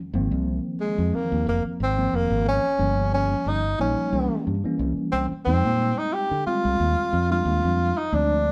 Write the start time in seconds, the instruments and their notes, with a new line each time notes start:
0.14 fretless electric bass G#1, tine electric piano D#3 F3 A#3 C4
0.31 fretless electric bass C2
0.81 tenor saxophone G#3
0.98 fretless electric bass F2
1.13 tine electric piano D#3 F3 A#3 C4, tenor saxophone A#3, muted fretless electric bass stroke
1.32 fretless electric bass D#2
1.47 fretless electric bass F1, tenor saxophone A#3
1.64 muted fretless electric bass stroke
1.80 fretless electric bass G#1, tenor saxophone C4
1.97 tine electric piano D#3 F3 A#3 C4
2.13 fretless electric bass F1, tenor saxophone A#3
2.30 fretless electric bass G#1
2.48 tenor saxophone C#4
2.79 fretless electric bass G1, tine electric piano F3 G3 A#3 C#4
3.14 tenor saxophone C#4
3.46 fretless electric bass G1, tenor saxophone D#4
3.79 fretless electric bass A#1, tine electric piano F3 G3 A#3 D#4, tenor saxophone C#4
4.12 fretless electric bass C2, tine electric piano E3 G3 A#3 C#4
4.47 fretless electric bass G2
4.64 tine electric piano E3 G3 A#3 C#4, muted fretless electric bass stroke
4.79 fretless electric bass C2
4.97 muted fretless electric bass stroke
5.12 fretless electric bass C2, tenor saxophone C4
5.32 muted fretless electric bass stroke
5.45 fretless electric bass F2, tine electric piano G3 G#3 C4 D#4, tenor saxophone C4
5.65 fretless electric bass A#2
5.98 tenor saxophone D#4
6.14 tenor saxophone G4
6.31 fretless electric bass D3
6.46 tine electric piano G3 G#3 C4 F4, tenor saxophone F4, muted fretless electric bass stroke
6.65 fretless electric bass C2
6.80 fretless electric bass D#2
7.13 fretless electric bass F2
7.30 tine electric piano G3 G#3 C4 D4, tenor saxophone F4
7.45 fretless electric bass D#2
7.64 fretless electric bass F2
7.98 tenor saxophone D#4
8.12 fretless electric bass D2, tine electric piano F3 G#3 C4 D4, tenor saxophone D4